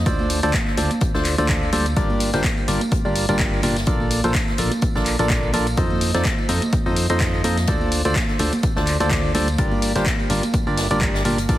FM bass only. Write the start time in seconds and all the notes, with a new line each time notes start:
0.06 D2
0.43 D2
0.78 D2
1.15 D2
1.38 D2
1.73 D2
1.97 G1
2.34 G1
2.68 G1
3.05 G1
3.29 G1
3.63 G1
3.87 A#1
4.24 A#1
4.58 A#1
4.95 A#1
5.19 A#1
5.54 A#1
5.78 F2
6.14 F2
6.49 F2
6.86 F2
7.10 F2
7.44 F2
7.68 D2
8.05 D2
8.40 D2
8.76 D2
9.00 D2
9.35 D2
9.58 G1
9.95 G1
10.30 G1
10.67 G1
10.91 G1
11.25 G1
11.49 A#1